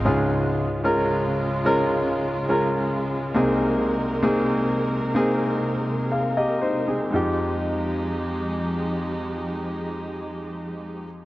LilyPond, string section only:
\new Staff \with { instrumentName = "String section" } { \clef bass \time 4/4 \key f \minor \tempo 4 = 64 << { <des f'>1 | <c bes'>1 | <f aes ees' g'>1 | } \\ { aes1~ | aes1 | r1 | } >> }